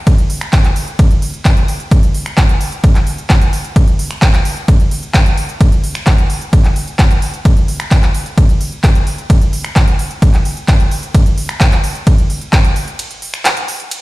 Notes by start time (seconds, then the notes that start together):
0.07 kick, closed hi-hat, ride
0.18 closed hi-hat
0.30 open hi-hat
0.41 finger snap, closed hi-hat
0.53 kick, clap, closed hi-hat, ride
0.64 clap, closed hi-hat
0.76 open hi-hat
0.88 closed hi-hat
0.99 kick, closed hi-hat, ride
1.11 closed hi-hat
1.22 open hi-hat
1.34 closed hi-hat
1.45 kick, clap, closed hi-hat, ride
1.57 closed hi-hat
1.68 open hi-hat
1.80 closed hi-hat
1.91 kick, closed hi-hat, ride
2.03 closed hi-hat
2.15 open hi-hat
2.26 finger snap, closed hi-hat
2.38 kick, clap, closed hi-hat, ride
2.49 closed hi-hat
2.61 open hi-hat
2.72 closed hi-hat
2.84 kick, closed hi-hat, ride
2.95 clap, closed hi-hat
3.07 open hi-hat
3.18 closed hi-hat
3.30 kick, clap, closed hi-hat, ride
3.41 closed hi-hat
3.53 open hi-hat
3.65 closed hi-hat
3.76 kick, closed hi-hat, ride
3.88 closed hi-hat
3.99 open hi-hat
4.11 finger snap, closed hi-hat
4.22 kick, clap, closed hi-hat, ride
4.34 clap, closed hi-hat
4.45 open hi-hat
4.57 closed hi-hat
4.68 kick, closed hi-hat, ride
4.80 closed hi-hat
4.91 open hi-hat
5.03 closed hi-hat
5.14 kick, clap, closed hi-hat, ride
5.26 closed hi-hat
5.38 open hi-hat
5.49 closed hi-hat
5.61 kick, closed hi-hat, ride
5.72 closed hi-hat
5.84 open hi-hat
5.95 finger snap, closed hi-hat
6.07 kick, clap, closed hi-hat, ride
6.18 closed hi-hat
6.30 open hi-hat
6.41 closed hi-hat
6.53 kick, closed hi-hat, ride
6.64 clap, closed hi-hat
6.76 open hi-hat
6.88 closed hi-hat
6.99 kick, clap, closed hi-hat, ride
7.11 closed hi-hat
7.22 open hi-hat
7.34 closed hi-hat
7.45 kick, closed hi-hat, ride
7.57 closed hi-hat
7.68 open hi-hat
7.80 finger snap, closed hi-hat
7.91 kick, clap, closed hi-hat, ride
8.03 clap, closed hi-hat
8.14 open hi-hat
8.26 closed hi-hat
8.38 kick, closed hi-hat, ride
8.49 closed hi-hat
8.61 open hi-hat
8.72 closed hi-hat
8.84 kick, clap, closed hi-hat, ride
8.95 closed hi-hat
9.07 open hi-hat
9.18 closed hi-hat
9.30 kick, closed hi-hat, ride
9.41 closed hi-hat
9.53 open hi-hat
9.65 finger snap, closed hi-hat
9.76 kick, clap, closed hi-hat, ride
9.88 closed hi-hat
9.99 open hi-hat
10.11 closed hi-hat
10.22 kick, closed hi-hat, ride
10.34 clap, closed hi-hat
10.45 open hi-hat
10.57 closed hi-hat
10.68 kick, clap, closed hi-hat, ride
10.80 closed hi-hat
10.91 open hi-hat
11.03 closed hi-hat
11.14 kick, closed hi-hat, ride
11.26 closed hi-hat
11.38 open hi-hat
11.49 finger snap, closed hi-hat
11.61 kick, clap, closed hi-hat, ride
11.72 clap, closed hi-hat
11.84 open hi-hat
11.95 closed hi-hat
12.07 kick, closed hi-hat, ride
12.18 closed hi-hat
12.30 open hi-hat
12.41 closed hi-hat
12.53 kick, clap, closed hi-hat, ride
12.64 closed hi-hat
12.76 open hi-hat
12.88 closed hi-hat
12.99 closed hi-hat, ride
13.11 closed hi-hat
13.22 open hi-hat
13.34 finger snap, closed hi-hat
13.45 clap, closed hi-hat, ride
13.57 closed hi-hat
13.68 open hi-hat
13.80 closed hi-hat
13.91 closed hi-hat, ride